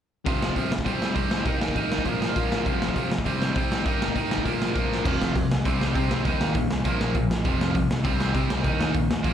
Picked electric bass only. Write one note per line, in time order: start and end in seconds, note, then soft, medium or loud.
5.05 5.17 F1 medium
5.21 5.33 F1 medium
5.36 5.47 C2 medium
5.51 5.63 C2 medium
5.66 5.77 C2 medium
5.81 5.92 C2 medium
5.95 6.07 C3 medium
6.10 6.22 C2 medium
6.26 6.38 D#2 medium
6.40 6.52 D#2 medium
6.55 6.67 A#1 medium
6.70 6.82 C2 medium
6.86 6.97 A#1 medium
7.00 7.12 A#1 medium
7.15 7.27 A#2 medium
7.29 7.42 A#1 medium
7.45 7.57 F1 medium
7.60 7.72 F1 medium
7.75 7.87 C2 medium
7.90 8.02 C2 medium
8.05 8.17 C2 medium
8.19 8.31 C2 medium
8.35 8.47 C3 medium
8.50 8.62 C2 medium
8.65 8.77 D#2 medium
8.79 8.91 D#2 medium
8.95 9.07 A#1 medium
9.10 9.22 D#2 medium
9.25 9.33 A#1 medium